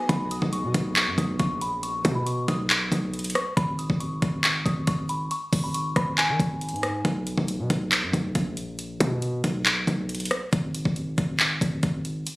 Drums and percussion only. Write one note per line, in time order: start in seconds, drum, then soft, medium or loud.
0.09 kick loud
0.09 closed hi-hat medium
0.31 closed hi-hat medium
0.42 kick loud
0.53 closed hi-hat medium
0.74 kick loud
0.74 closed hi-hat medium
0.96 clap loud
0.96 closed hi-hat medium
1.18 kick loud
1.18 closed hi-hat medium
1.39 kick loud
1.39 closed hi-hat medium
1.61 closed hi-hat medium
1.83 closed hi-hat medium
2.05 kick loud
2.05 closed hi-hat medium
2.27 closed hi-hat medium
2.48 kick medium
2.48 closed hi-hat medium
2.70 clap loud
2.70 closed hi-hat medium
2.92 kick loud
2.92 closed hi-hat medium
3.14 closed hi-hat soft
3.19 closed hi-hat medium
3.24 closed hi-hat medium
3.30 closed hi-hat medium
3.35 cross-stick medium
3.35 closed hi-hat medium
3.57 kick loud
3.57 closed hi-hat medium
3.79 closed hi-hat medium
3.90 kick loud
4.00 closed hi-hat medium
4.22 kick loud
4.22 closed hi-hat medium
4.44 clap loud
4.44 closed hi-hat medium
4.66 kick loud
4.66 closed hi-hat medium
4.87 kick loud
4.87 closed hi-hat medium
5.09 closed hi-hat medium
5.31 closed hi-hat medium
5.53 kick loud
5.53 open hi-hat medium
5.74 closed hi-hat medium
5.96 kick loud
5.96 cross-stick medium
5.96 closed hi-hat medium
6.18 clap loud
6.18 closed hi-hat medium
6.40 kick loud
6.40 closed hi-hat medium
6.61 closed hi-hat medium
6.69 closed hi-hat medium
6.76 closed hi-hat soft
6.83 cross-stick medium
6.83 closed hi-hat medium
7.05 kick loud
7.05 closed hi-hat medium
7.27 closed hi-hat medium
7.38 kick loud
7.48 closed hi-hat medium
7.70 kick loud
7.70 closed hi-hat medium
7.92 clap loud
7.92 closed hi-hat medium
8.13 kick loud
8.13 closed hi-hat medium
8.35 kick loud
8.35 closed hi-hat medium
8.57 closed hi-hat medium
8.79 closed hi-hat medium
9.00 kick loud
9.00 closed hi-hat medium
9.22 closed hi-hat medium
9.44 kick loud
9.44 closed hi-hat medium
9.66 clap loud
9.66 closed hi-hat medium
9.87 kick loud
9.87 closed hi-hat medium
10.09 closed hi-hat soft
10.15 closed hi-hat medium
10.20 closed hi-hat medium
10.25 closed hi-hat medium
10.31 cross-stick medium
10.31 closed hi-hat medium
10.53 kick loud
10.53 closed hi-hat medium
10.75 closed hi-hat medium
10.85 kick loud
10.96 closed hi-hat medium
11.18 kick loud
11.18 closed hi-hat medium
11.40 clap loud
11.40 closed hi-hat medium
11.61 kick loud
11.61 closed hi-hat medium
11.83 kick loud
11.83 closed hi-hat medium
12.05 closed hi-hat medium
12.27 closed hi-hat medium